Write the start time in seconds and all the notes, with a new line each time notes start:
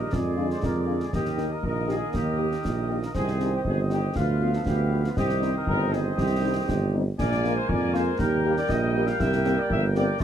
Already playing: A#4
0.12 F2 D3 G#3 G#4 D5, concert bass drum, snare
0.36 G#3 D4 F4
0.51 C5, snare
0.63 F2 A#4, concert bass drum, snare
0.87 G#3 D4 F4
1.00 G#4, snare
1.13 D#2 D#3 A#3 G4 A#4 D#5, concert bass drum, snare
1.26 snare
1.37 A#3 D#4 G4, snare
1.52 A#4
1.63 A#1 A#4, concert bass drum
1.87 A#3 D#4 G4 G#4, snare
2.14 D#2 G4, concert bass drum, snare
2.37 A#3 D#4 G4
2.52 snare
2.65 A#1, concert bass drum, snare
2.89 A#3 D#4 G4
3.03 A#4, snare
3.14 C2 D#3 C4 G#4 C5 D#5, concert bass drum, snare, crash
3.28 snare
3.40 C4 D#4 G4, snare
3.54 G4
3.65 G1 G#4, concert bass drum
3.90 C4 D#4 G4, snare
4.16 D2 F3 B3 F4 B4 F5, concert bass drum, snare
4.41 B3 F4
4.53 A4, snare
4.66 D2 G4, concert bass drum, snare
4.91 B3 F4
5.04 F4, snare
5.17 C2 D#3 C4 G4 C5 D#5, concert bass drum, snare
5.29 snare
5.42 G3 C4 D#4, snare
5.57 A#4
5.67 G1 A#4, concert bass drum
5.92 G3 C4 D#4 G#4, snare
6.17 C2 G4, concert bass drum, snare
6.43 G3 C4 D#4
6.68 G1, concert bass drum, snare
6.93 G3 C4 D#4
7.19 A#1 G#3 A#3 A#4 D5 G#5, concert bass drum, snare, crash
7.32 snare
7.44 G#3 A#3 F4, snare
7.56 C5
7.68 F2 D5, concert bass drum
7.94 G#3 A#3 F4 C5, snare
8.18 D#2 G3 A#4 G5, concert bass drum, snare
8.45 G3 A#3 G4
8.57 D5, snare
8.69 A#1 D#5, concert bass drum, snare
8.94 G3 A#3 G4
9.07 F5, snare
9.20 C2 A#3 A#4 E5, concert bass drum, snare
9.33 snare
9.45 A#3 C4 G4, snare
9.58 D5
9.70 G1 E5, concert bass drum
9.95 A#3 C4 G4 D5, snare
10.20 D#3 G#3 G#4 C5 D#5, concert bass drum, snare